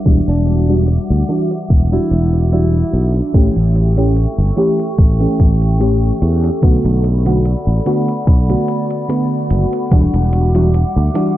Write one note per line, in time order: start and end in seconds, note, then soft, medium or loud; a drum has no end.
0.00 3.30 G3 medium
0.00 6.59 E5 medium
0.00 3.30 F#5 medium
0.00 3.30 D6 medium
0.05 0.19 E1 medium
0.05 0.63 E3 medium
0.05 0.64 G3 medium
0.05 0.64 D4 medium
0.05 0.64 F#4 medium
0.05 kick loud
0.05 closed hi-hat medium
0.27 0.96 E1 medium
0.27 0.77 D4 medium
0.27 closed hi-hat soft
0.47 closed hi-hat medium
0.68 0.81 E3 medium
0.68 0.81 G3 medium
0.68 0.81 D4 medium
0.68 0.81 F#4 medium
0.68 closed hi-hat medium
0.88 closed hi-hat medium
1.10 1.22 D2 medium
1.28 1.51 E3 medium
1.28 1.51 G3 medium
1.28 1.51 D4 medium
1.28 1.52 F#4 medium
1.28 closed hi-hat medium
1.51 closed hi-hat medium
1.70 1.97 E1 medium
1.70 kick loud
1.70 closed hi-hat medium
1.91 2.47 E3 medium
1.91 2.47 G3 medium
1.91 2.48 D4 medium
1.91 2.41 E4 medium
1.91 2.48 F#4 medium
1.91 closed hi-hat soft
2.11 2.82 E1 medium
2.11 closed hi-hat medium
2.33 closed hi-hat soft
2.52 3.29 E3 medium
2.52 3.30 G3 medium
2.52 3.30 D4 medium
2.52 3.15 E4 medium
2.52 3.30 F#4 medium
2.52 closed hi-hat medium
2.93 3.20 B1 medium
2.93 closed hi-hat medium
3.15 closed hi-hat medium
3.33 3.48 A1 medium
3.33 3.92 E3 medium
3.33 3.92 A3 medium
3.33 3.92 C#4 medium
3.33 3.92 G4 medium
3.33 9.88 A4 medium
3.33 6.60 G5 medium
3.33 6.60 C#6 medium
3.33 kick loud
3.33 closed hi-hat medium
3.56 4.25 A1 medium
3.56 closed hi-hat soft
3.76 closed hi-hat medium
3.97 4.09 E3 medium
3.97 4.09 A3 medium
3.97 4.09 C#4 medium
3.97 4.10 G4 medium
3.97 closed hi-hat medium
4.16 closed hi-hat medium
4.38 4.50 G1 medium
4.56 4.79 E3 medium
4.56 4.79 A3 medium
4.56 4.80 C#4 medium
4.56 4.80 G4 medium
4.56 closed hi-hat medium
4.79 closed hi-hat soft
4.98 5.25 A1 medium
4.98 kick loud
4.98 closed hi-hat medium
5.20 5.76 E3 medium
5.20 5.76 A3 medium
5.20 5.76 C#4 medium
5.20 5.76 G4 medium
5.20 closed hi-hat soft
5.40 6.10 A1 medium
5.40 kick loud
5.40 closed hi-hat medium
5.62 closed hi-hat soft
5.79 6.58 E3 medium
5.79 6.58 A3 medium
5.79 6.58 C#4 medium
5.79 6.58 G4 medium
5.79 closed hi-hat medium
6.22 6.49 E2 medium
6.22 closed hi-hat medium
6.44 closed hi-hat soft
6.62 6.77 B1 medium
6.62 7.20 D3 medium
6.62 7.20 A3 medium
6.62 7.21 B3 medium
6.62 7.21 F#4 medium
6.62 9.89 D5 medium
6.62 11.37 F#5 medium
6.62 9.89 B5 medium
6.62 kick loud
6.62 closed hi-hat medium
6.85 7.54 B1 medium
6.85 closed hi-hat soft
7.04 closed hi-hat medium
7.25 7.38 D3 medium
7.25 7.38 A3 medium
7.25 7.38 B3 medium
7.25 7.38 F#4 medium
7.25 closed hi-hat soft
7.45 closed hi-hat medium
7.67 7.79 A1 medium
7.85 8.08 D3 medium
7.85 8.08 A3 medium
7.85 8.09 B3 medium
7.85 8.09 F#4 medium
7.85 closed hi-hat medium
8.08 closed hi-hat soft
8.27 8.54 B1 medium
8.27 kick loud
8.27 closed hi-hat medium
8.49 9.05 D3 medium
8.49 9.05 A3 medium
8.49 9.05 B3 medium
8.49 9.05 F#4 medium
8.49 closed hi-hat soft
8.68 closed hi-hat medium
8.91 closed hi-hat soft
9.08 9.87 D3 medium
9.08 9.87 A3 medium
9.08 9.87 B3 medium
9.08 9.87 F#4 medium
9.08 closed hi-hat medium
9.50 9.64 F#1 medium
9.50 closed hi-hat medium
9.73 closed hi-hat soft
9.91 10.06 E1 medium
9.91 10.49 E3 medium
9.91 10.49 G3 medium
9.91 11.37 G3 medium
9.91 10.50 D4 medium
9.91 10.50 F#4 medium
9.91 11.37 E5 medium
9.91 11.37 D6 medium
9.91 kick loud
9.91 closed hi-hat medium
10.14 10.83 E1 medium
10.14 closed hi-hat soft
10.33 closed hi-hat medium
10.54 10.67 E3 medium
10.54 10.67 G3 medium
10.54 10.67 D4 medium
10.54 10.67 F#4 medium
10.54 closed hi-hat soft
10.74 closed hi-hat medium
10.96 11.08 D2 medium
11.14 11.37 E3 medium
11.14 11.37 G3 medium
11.14 11.37 D4 medium
11.14 11.37 F#4 loud
11.14 closed hi-hat medium